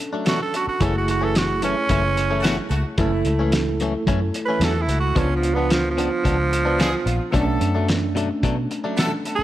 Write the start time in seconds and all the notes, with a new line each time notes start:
Already playing: C#4 D4 A4
0.00 closed hi-hat
0.13 F#3 A3 D4
0.24 B2 F#3 A3 B3 D4 A4, snare, closed hi-hat
0.29 F#4
0.40 A4, muted clean electric guitar stroke
0.53 B3 D4 F#4 A4, muted clean electric guitar stroke, closed hi-hat
0.67 F#4, muted fingered electric bass stroke
0.78 F#1 F#2 E3 A3 C#4 E4 F#4 G#4, kick, closed hi-hat
0.83 A4
0.94 F#4, muted clean electric guitar stroke
1.08 F#4, muted clean electric guitar stroke, closed hi-hat
1.21 E3 A3 C#4 A4
1.35 F#4, snare, closed hi-hat
1.62 F#2 E3 A3 C#4, closed hi-hat
1.77 muted clean electric guitar stroke
1.89 F#1 F#2 E3 A3 C#4, kick, closed hi-hat
2.03 muted clean electric guitar stroke
2.17 muted clean electric guitar stroke, closed hi-hat
2.30 E3 A3 C#4
2.40 F#2 A3 E4 F#4
2.44 E3 A3 C#4, snare, closed hi-hat
2.58 muted clean electric guitar stroke
2.68 C#2 A3 E4 F#4, muted clean electric guitar stroke, closed hi-hat
2.96 F#1 F#2 E3 A3 C#4 E4 A4, kick, closed hi-hat
3.13 muted clean electric guitar stroke
3.25 C#2, muted clean electric guitar stroke, closed hi-hat
3.39 E3 A3 C#4
3.52 muted clean electric guitar stroke, snare, closed hi-hat
3.80 F#2 E3 A3 C#4, closed hi-hat
3.94 muted clean electric guitar stroke
4.07 F#2 E3 A3 C#4, kick, closed hi-hat
4.21 muted clean electric guitar stroke
4.34 muted clean electric guitar stroke, closed hi-hat
4.46 A3 C#4 B4
4.50 E3
4.60 E2 F#2 E3 A3 C#4 E4 F#4, snare, closed hi-hat
4.64 A4
4.75 muted clean electric guitar stroke
4.82 E4
4.86 C#2 A3 E4 F#4, muted clean electric guitar stroke, closed hi-hat
5.00 F#4
5.15 C#2 C#3 F3 B3 C#4 D4 F4, kick, closed hi-hat
5.30 muted clean electric guitar stroke
5.36 F3
5.43 muted clean electric guitar stroke, closed hi-hat
5.55 F3 B3 D4
5.70 F3, muted clean electric guitar stroke, snare, closed hi-hat
5.91 F3
5.97 C#3 F3 B3 D4, closed hi-hat
6.10 muted clean electric guitar stroke
6.24 C#2 C#3 F3 B3 D4, kick, closed hi-hat
6.38 muted clean electric guitar stroke
6.51 muted clean electric guitar stroke, closed hi-hat
6.65 F3 B3 D4
6.78 C#3 F3 B3 D4 G#4, snare, closed hi-hat
6.92 muted clean electric guitar stroke
7.04 A#1 B3 D4 F4, muted clean electric guitar stroke, closed hi-hat
7.30 B1 B2 F#3 A3 B3 D4 A4
7.34 A3 C#4 D4, kick, closed hi-hat
7.46 muted clean electric guitar stroke
7.60 F#2, muted clean electric guitar stroke, closed hi-hat
7.75 F#3 A3 D4
7.88 muted clean electric guitar stroke, snare, closed hi-hat
8.15 B2 F#3 A3 D4, closed hi-hat
8.30 muted clean electric guitar stroke
8.43 B2 F#3 A3 D4, kick, closed hi-hat
8.57 muted clean electric guitar stroke
8.71 muted clean electric guitar stroke, closed hi-hat
8.84 F#3 A3 D4
8.97 B2 F#3 A3 B3 D4 A4, snare, closed hi-hat
9.12 muted clean electric guitar stroke
9.25 B3 D4 A4, muted clean electric guitar stroke, closed hi-hat
9.35 A4, muted fingered electric bass stroke